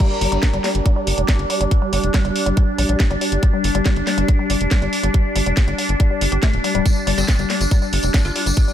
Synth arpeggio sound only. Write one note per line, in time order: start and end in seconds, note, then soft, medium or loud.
0.21 0.27 G3 medium
0.32 0.37 G3 medium
0.53 0.59 G3 medium
0.64 0.70 G3 medium
0.86 0.91 G3 medium
0.96 1.02 G3 medium
1.18 1.23 G3 medium
1.28 1.34 G3 medium
1.50 1.55 G3 medium
1.61 1.66 G3 medium
1.82 1.87 G3 medium
1.93 1.98 G3 medium
2.14 2.20 G3 medium
2.25 2.30 G3 medium
2.46 2.52 G3 medium
2.57 2.62 G3 medium
2.78 2.84 G3 medium
2.89 2.95 G3 medium
3.11 3.16 G3 medium
3.21 3.27 G3 medium
3.43 3.48 G3 medium
3.54 3.59 G3 medium
3.75 3.80 G3 medium
3.86 3.91 G3 medium
4.07 4.12 G3 medium
4.18 4.23 G3 medium
4.39 4.45 G3 medium
4.50 4.55 G3 medium
4.71 4.77 G3 medium
4.82 4.88 G3 medium
5.04 5.09 G3 medium
5.14 5.20 G3 medium
5.36 5.41 G3 medium
5.46 5.52 G3 medium
5.68 5.73 G3 medium
5.79 5.84 G3 medium
6.00 6.05 G3 medium
6.11 6.16 G3 medium
6.32 6.40 G4 medium
6.43 6.46 A3 medium
6.64 6.70 G3 medium
6.75 6.80 G3 loud
6.86 6.91 G3 medium
7.07 7.12 G3 medium
7.18 7.23 G3 medium
7.39 7.45 G3 medium
7.50 7.55 G3 medium
7.71 7.77 G3 medium
7.82 7.87 G3 medium
8.04 8.09 G3 medium
8.14 8.20 G3 medium
8.36 8.41 G3 medium
8.46 8.52 G3 medium
8.68 8.73 G3 medium